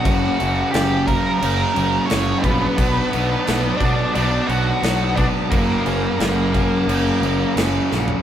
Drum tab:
CC |x-x-x-x-x-x-x-x-|x-x-x-x-x-x-x-x-|x-x-x-x-x-x-x---|
SD |----o-------o---|----o-------o---|----o-------o-o-|
FT |----------------|----------------|---------------o|
BD |o-----o-------o-|o-----o-------o-|o-----o---------|